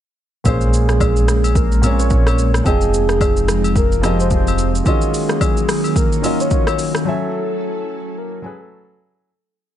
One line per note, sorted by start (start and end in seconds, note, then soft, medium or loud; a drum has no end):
0.44 2.62 A#1 medium
0.44 1.34 A#2 medium
0.44 2.64 G#3 medium
0.44 1.34 A#3 medium
0.44 2.64 A#3 medium
0.44 2.64 C#4 medium
0.44 1.35 C#4 medium
0.44 1.58 G#4 loud
0.44 1.35 G#4 medium
0.44 1.36 C5 medium
0.44 kick loud
0.44 high agogo medium
0.44 shaker medium
0.61 shaker medium
0.74 shaker medium
0.89 cross-stick medium
0.89 shaker medium
1.01 kick loud
1.01 high agogo medium
1.01 low woodblock medium
1.01 shaker medium
1.16 shaker medium
1.28 cross-stick medium
1.28 shaker loud
1.44 high agogo medium
1.44 shaker medium
1.55 2.02 A#4 loud
1.55 kick loud
1.55 shaker medium
1.72 shaker medium
1.82 2.50 A#2 medium
1.82 2.51 A#3 medium
1.82 1.91 C4 medium
1.82 2.52 G#4 medium
1.82 2.52 C#5 medium
1.82 high agogo medium
1.82 shaker medium
1.90 2.55 C#4 medium
1.99 2.11 C#5 loud
1.99 shaker medium
2.10 2.51 C#5 loud
2.10 kick loud
2.10 shaker medium
2.27 cross-stick medium
2.27 high agogo medium
2.27 shaker soft
2.38 shaker medium
2.54 cross-stick loud
2.54 shaker medium
2.64 4.82 F1 medium
2.64 3.54 F3 medium
2.64 4.84 F3 medium
2.64 4.84 G#3 medium
2.64 3.54 C4 medium
2.64 4.84 C4 medium
2.64 4.84 D#4 medium
2.64 3.72 G#4 loud
2.64 3.55 G#4 medium
2.64 3.56 D#5 medium
2.64 3.55 G5 medium
2.64 kick loud
2.64 high agogo medium
2.64 shaker medium
2.81 shaker medium
2.94 shaker medium
3.09 cross-stick medium
3.09 shaker medium
3.21 kick loud
3.21 high agogo medium
3.21 low woodblock medium
3.21 shaker medium
3.37 shaker medium
3.48 cross-stick loud
3.48 shaker medium
3.64 high agogo medium
3.64 shaker medium
3.76 4.17 A#4 loud
3.76 kick loud
3.76 shaker medium
3.92 shaker medium
4.02 4.70 F3 medium
4.02 4.71 C4 medium
4.02 4.71 G4 medium
4.02 4.72 G#4 medium
4.02 4.72 D#5 medium
4.02 cross-stick medium
4.02 high agogo medium
4.02 shaker medium
4.20 4.31 C5 medium
4.20 shaker medium
4.30 4.72 C5 loud
4.30 kick medium
4.30 shaker medium
4.47 high agogo medium
4.47 shaker soft
4.58 shaker medium
4.75 shaker medium
4.84 5.74 D#3 medium
4.84 7.04 D#3 medium
4.84 7.04 F#3 medium
4.84 7.04 A#3 medium
4.84 5.75 C#4 medium
4.84 7.04 C#4 medium
4.84 5.75 F4 medium
4.84 5.76 F#4 medium
4.84 5.99 G#4 loud
4.84 5.76 D#5 medium
4.84 kick loud
4.84 high agogo medium
4.84 shaker medium
5.01 shaker medium
5.14 open hi-hat medium
5.14 shaker medium
5.29 cross-stick medium
5.29 shaker medium
5.41 kick loud
5.41 high agogo medium
5.41 low woodblock medium
5.41 shaker medium
5.57 shaker medium
5.69 cross-stick loud
5.69 open hi-hat medium
5.69 shaker medium
5.84 high agogo medium
5.84 shaker medium
5.96 6.43 A#4 loud
5.96 kick loud
5.96 shaker medium
6.12 shaker medium
6.22 6.91 D#3 medium
6.22 6.91 C#4 medium
6.22 6.92 F4 medium
6.22 6.92 F#4 medium
6.22 6.93 D#5 medium
6.22 open hi-hat medium
6.22 high agogo medium
6.22 shaker medium
6.40 6.52 C#5 loud
6.40 shaker medium
6.51 6.92 C#5 loud
6.51 kick medium
6.51 shaker medium
6.67 cross-stick medium
6.67 high agogo medium
6.67 shaker soft
6.79 open hi-hat soft
6.79 shaker medium
6.95 cross-stick loud
6.95 shaker medium
7.05 7.94 F#3 medium
7.05 9.24 F#3 medium
7.05 7.95 C#4 medium
7.05 9.24 C#4 medium
7.05 9.24 E4 medium
7.05 9.24 A4 loud
7.05 7.96 A4 medium
7.05 8.19 A4 loud
7.05 7.96 E5 medium
7.05 7.95 G#5 medium
8.18 8.45 A#4 medium
8.42 9.11 F#3 medium
8.42 9.11 C#4 medium
8.42 8.63 G#4 medium
8.42 9.12 A4 medium
8.42 9.13 B4 medium
8.42 9.12 G#5 medium
8.62 9.00 A4 medium